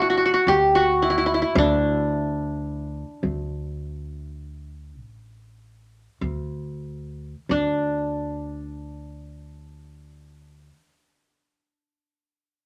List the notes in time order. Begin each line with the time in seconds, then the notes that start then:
Already playing: A1 D4 E4
0.02 F#4
0.10 F#4
0.17 F#4
0.25 F#4
0.34 F#4
0.47 D2 G4
0.75 F#4
1.02 E4
1.10 E4
1.18 E4
1.26 E4
1.34 E4
1.42 E4
1.55 D2 D4
3.23 D2
4.99 A1
6.21 D2
7.49 D2 D4